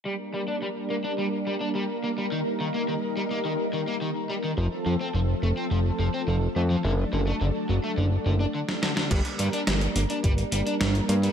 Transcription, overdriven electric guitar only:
X:1
M:4/4
L:1/16
Q:1/4=106
K:Gm
V:1 name="Overdriven electric guitar" clef=bass
G, z G, D G, z B, D G, z G, D G, z B, G, | E, z E, B, E, z G, B, E, z E, B, E, z G, E, | F, z F, C F, z A, C F, z F, C F, z A, F, | D, z D, A, D, z ^F, A, D, z D, D D, z D, D, |
G, z G, D G, z B, D G, z G, D G, z B, G, |]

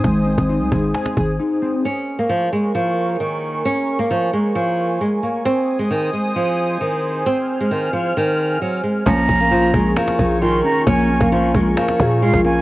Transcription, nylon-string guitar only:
X:1
M:4/4
L:1/16
Q:1/4=133
K:Bbm
V:1 name="Nylon-string guitar" clef=bass
z16 | D3 B, F,2 A,2 F,4 E,4 | D3 B, F,2 A,2 F,4 A,2 B,2 | C3 A, E,2 A,2 F,4 E,4 |
C3 A, E,2 F,2 E,4 G,2 A,2 | D3 B, F,2 A,2 F,4 E,4 | D3 B, F,2 A,2 F,4 A,2 B,2 |]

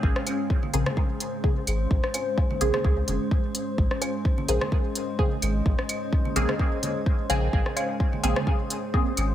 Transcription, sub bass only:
X:1
M:4/4
L:1/8
Q:"Swing 16ths" 1/4=128
K:Bbm
V:1 name="Sub bass" clef=bass
B,,, z2 B,,, z3 A,,, | B,,, z2 B,,, D,, F,,, z2 | B,,, z2 B,,, z3 A,,, | B,,, z2 B,,, z3 B,,, |
B,,, z2 B,,, z3 A,,, |]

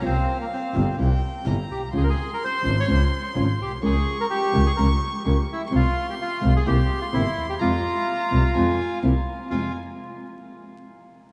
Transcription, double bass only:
X:1
M:4/4
L:1/8
Q:1/4=127
K:Fm
V:1 name="Double bass" clef=bass
C,, z2 G,,, C,, z G,,, =B,,, | D,, z2 A,,, D,, z A,,, =B,,, | D,, z2 D,, D,, z D,, z | C,, z2 C,, C,, z G,,, E,, |
F,, z2 C,, F,, z C,, z | F,, z6 z |]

